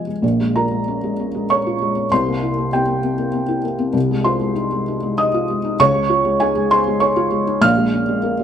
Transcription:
Already playing: C#3 F3 G#3 D#4 F4 D#5 G#5
0.07 G#3
0.22 A#1 A#2
0.40 G#3
0.56 F4 A#4 A#5
0.71 G#3
0.88 C#4
1.03 G#3
1.19 C#4
1.35 G#3
1.50 C#4 C#5 C#6
1.67 F4
1.82 G#3
1.96 C#4
2.12 C2 C3 C5 C6
2.26 A#3
2.42 E4
2.58 A#3
2.73 C4 G4 G5
2.88 A#3
3.03 C4
3.18 A#3
3.33 C4
3.48 E4
3.65 A#3
3.79 C4
3.93 C2 C3
4.11 G#3
4.24 F4 C5 C6
4.41 G#3
4.55 D#4
4.72 G#3
4.88 D#4
5.03 G#3
5.18 D#4 D#5 D#6
5.34 F4
5.50 G#3
5.65 D#4
5.80 C#2 C#3 C#5 C#6
5.95 G#3
6.09 F4
6.25 G#3
6.40 D#4 G#4 G#5
6.55 G#3
6.71 D#4 C5 C6
6.87 G#3
7.00 D#4 C#5 C#6
7.16 F4
7.31 G#3
7.47 D#4
7.61 A#1 A#2 F5 F6
7.77 G#3
7.94 C#4
8.09 G#3
8.23 A#3
8.39 G#3

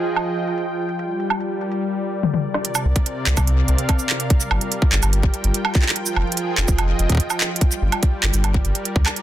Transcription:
Already playing: F3 F4 G#4 D#5 G5
0.06 closed hi-hat
0.16 closed hi-hat, high woodblock
0.37 closed hi-hat
0.47 closed hi-hat
0.58 closed hi-hat
0.89 closed hi-hat
0.99 G3, closed hi-hat
1.20 closed hi-hat
1.30 high woodblock
1.41 A#4, closed hi-hat
1.61 closed hi-hat
1.72 D5, closed hi-hat
2.23 high tom
2.34 high tom
2.54 snare
2.65 C3, closed hi-hat
2.75 cabasa, high woodblock
2.85 C2 C4
2.96 kick, closed hi-hat
3.06 F5, closed hi-hat
3.27 C2, clap
3.37 C2, kick, closed hi-hat, cabasa, high woodblock
3.47 closed hi-hat
3.68 C2, closed hi-hat
3.78 closed hi-hat
3.89 kick, closed hi-hat, high woodblock
3.99 cabasa
4.09 clap
4.20 closed hi-hat
4.30 G3, kick, closed hi-hat
4.37 F4, cabasa
4.51 G1, high woodblock
4.61 closed hi-hat
4.72 closed hi-hat
4.82 kick
4.92 G1, clap
5.03 G1 G5, closed hi-hat, cabasa, high woodblock
5.13 closed hi-hat
5.23 kick
5.34 closed hi-hat
5.44 G1, closed hi-hat
5.54 closed hi-hat
5.65 high woodblock
5.75 kick, clap
5.82 clap
5.89 clap
5.96 F3, closed hi-hat
6.06 cabasa
6.16 F1, high woodblock
6.21 G#4
6.32 closed hi-hat
6.37 closed hi-hat
6.58 F1, clap
6.68 F1 D#5, kick, cabasa
6.79 closed hi-hat, high woodblock
6.99 F1, closed hi-hat
7.10 kick, closed hi-hat
7.12 kick
7.15 kick
7.17 kick, closed hi-hat
7.30 cabasa, high woodblock
7.41 clap
7.56 closed hi-hat
7.61 G3, kick, closed hi-hat
7.72 cabasa
7.82 G1
7.92 D5, closed hi-hat, high woodblock
8.03 kick, closed hi-hat
8.23 G1 A#4, clap
8.34 G1, closed hi-hat, cabasa
8.44 closed hi-hat, high woodblock
8.54 kick
8.65 G1, closed hi-hat
8.75 closed hi-hat
8.85 closed hi-hat
8.96 D2, kick
9.06 clap, high woodblock
9.16 closed hi-hat

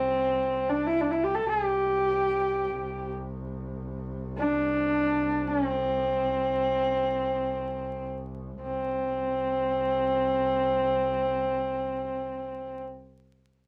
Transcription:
Already playing: C2 C4
0.70 D4
0.87 E4
1.01 D4
1.11 E4
1.24 G4
1.35 A4
1.47 C2 G4
4.38 D4
5.47 C#4
5.66 C4
8.63 C2 C4

